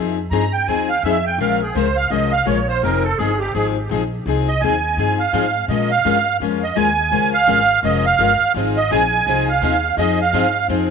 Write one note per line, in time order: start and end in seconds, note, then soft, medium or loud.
0.00 0.30 F2 medium
0.00 0.17 F3 medium
0.00 0.17 C4 medium
0.00 0.17 D#4 medium
0.00 0.18 G#4 medium
0.31 0.66 G2 medium
0.31 0.43 F3 medium
0.31 0.43 C4 medium
0.31 0.44 D#4 medium
0.31 0.43 G#4 medium
0.31 0.53 A#5 medium
0.53 0.67 G5 medium
0.67 1.02 D#2 medium
0.67 0.89 F3 medium
0.67 0.89 C4 medium
0.67 0.89 D#4 medium
0.67 0.89 G#4 medium
0.67 0.89 G#5 medium
0.89 1.03 F5 medium
1.03 1.38 F2 medium
1.03 1.15 F3 medium
1.03 1.15 C4 medium
1.03 1.15 D#4 medium
1.03 1.16 G#4 medium
1.03 1.25 E5 medium
1.26 1.39 G5 loud
1.38 1.74 A#1 medium
1.38 1.61 F3 medium
1.38 1.61 G#3 medium
1.38 1.61 C#4 medium
1.38 1.61 F4 medium
1.38 1.61 A#4 medium
1.38 1.61 F5 medium
1.62 1.75 G#4 medium
1.75 2.10 C#2 medium
1.75 1.86 F3 medium
1.75 1.86 G#3 medium
1.75 1.87 C#4 medium
1.75 1.87 F4 medium
1.75 1.87 A#4 loud
1.75 1.96 C5 medium
1.96 2.10 F5 loud
2.10 2.45 C2 medium
2.10 2.32 F3 medium
2.10 2.32 G#3 medium
2.10 2.32 C#4 medium
2.10 2.32 F4 medium
2.10 2.32 A#4 medium
2.10 2.32 D#5 medium
2.32 2.46 F5 loud
2.46 2.81 A#1 medium
2.46 2.57 F3 medium
2.46 2.58 G#3 medium
2.46 2.58 C#4 medium
2.46 2.58 F4 medium
2.46 2.58 A#4 medium
2.46 2.68 C#5 medium
2.69 2.82 C5 medium
2.83 3.18 F1 medium
2.83 3.04 F3 medium
2.83 3.04 C4 medium
2.83 3.04 D#4 medium
2.83 3.04 G#4 medium
2.83 3.04 A#4 medium
3.04 3.18 A4 medium
3.18 3.53 G1 medium
3.18 3.30 F3 medium
3.18 3.30 C4 medium
3.18 3.30 D#4 medium
3.18 3.39 G#4 medium
3.18 3.30 G#4 medium
3.39 3.53 G4 medium
3.54 3.89 G#1 medium
3.54 3.75 F3 medium
3.54 3.75 C4 medium
3.54 3.76 D#4 medium
3.54 3.67 G#4 medium
3.54 3.76 G#4 medium
3.89 4.25 A#1 medium
3.89 4.01 F3 medium
3.89 4.02 C4 medium
3.89 4.02 D#4 medium
3.89 4.02 G#4 medium
4.26 4.61 C2 medium
4.26 4.47 F3 medium
4.26 4.47 C4 medium
4.26 4.48 D#4 medium
4.26 4.48 G#4 medium
4.48 4.61 D#5 medium
4.60 4.96 D#2 medium
4.60 4.73 F3 medium
4.60 4.74 C4 medium
4.60 4.74 D#4 medium
4.60 5.15 G#5 loud
4.64 4.74 G#4 medium
4.97 5.32 G2 medium
4.97 5.19 F3 medium
4.97 5.19 C4 medium
4.97 5.19 D#4 medium
4.97 5.19 G#4 medium
5.19 5.66 F5 medium
5.33 5.68 G#2 medium
5.33 5.44 F3 medium
5.33 5.45 C4 medium
5.33 5.45 D#4 medium
5.33 5.45 G#4 medium
5.68 6.03 A#2 medium
5.68 5.90 F3 medium
5.68 5.90 G#3 medium
5.68 5.91 C#4 medium
5.68 5.91 F4 medium
5.68 5.91 A#4 medium
5.68 5.90 D#5 medium
5.91 6.37 F5 loud
6.05 6.40 G2 medium
6.05 6.16 F3 medium
6.05 6.16 G#3 medium
6.05 6.16 C#4 medium
6.05 6.17 F4 medium
6.05 6.17 A#4 medium
6.40 6.75 F2 medium
6.40 6.62 F3 medium
6.40 6.62 G#3 medium
6.40 6.62 C#4 medium
6.40 6.63 F4 medium
6.40 6.63 A#4 medium
6.63 6.77 D#5 medium
6.76 7.11 D#2 medium
6.76 6.87 F3 medium
6.76 6.87 G#3 medium
6.76 6.88 C#4 medium
6.76 6.88 F4 medium
6.76 6.88 A#4 medium
6.76 7.30 G#5 loud
7.12 7.47 C#2 medium
7.12 7.33 F3 medium
7.12 7.33 G#3 medium
7.12 7.33 C#4 medium
7.12 7.33 F4 medium
7.12 7.33 A#4 medium
7.34 7.80 F5 loud
7.47 7.82 G#1 medium
7.47 7.59 F3 medium
7.47 7.59 G#3 medium
7.47 7.59 C#4 medium
7.47 7.59 F4 medium
7.47 7.59 A#4 medium
7.83 8.18 F1 medium
7.83 8.04 F3 medium
7.83 8.05 G#3 medium
7.83 8.05 C#4 medium
7.83 8.05 F4 medium
7.83 8.05 A#4 medium
7.83 8.05 D#5 medium
8.06 8.52 F5 loud
8.19 8.39 G1 loud
8.19 8.30 F3 medium
8.19 8.31 G#3 medium
8.19 8.31 C#4 medium
8.19 8.31 F4 medium
8.19 8.31 A#4 medium
8.54 8.89 G#1 medium
8.54 8.76 F3 medium
8.54 8.76 C4 medium
8.54 8.76 D#4 medium
8.54 8.77 G#4 medium
8.77 8.91 D#5 loud
8.91 9.26 A#1 medium
8.91 9.02 F3 medium
8.91 9.02 C4 medium
8.91 9.03 D#4 medium
8.91 9.03 G#4 medium
8.91 9.45 G#5 loud
9.27 9.61 C2 medium
9.27 9.48 F3 medium
9.27 9.48 C4 medium
9.27 9.49 D#4 medium
9.27 9.49 G#4 medium
9.49 9.95 F5 medium
9.61 9.96 D#2 medium
9.61 9.74 F3 medium
9.61 9.74 C4 medium
9.61 9.74 D#4 medium
9.61 9.74 G#4 medium
9.97 10.32 F2 medium
9.97 10.19 F3 medium
9.97 10.19 C4 medium
9.97 10.19 D#4 medium
9.97 10.19 G#4 medium
9.97 10.20 D#5 medium
10.21 10.67 F5 loud
10.33 10.68 G2 medium
10.33 10.45 F3 medium
10.33 10.45 C4 medium
10.33 10.45 D#4 medium
10.33 10.45 G#4 medium
10.68 10.90 F2 medium
10.68 10.90 F3 medium
10.68 10.90 C4 medium
10.68 10.90 D#4 medium
10.68 10.90 G#4 medium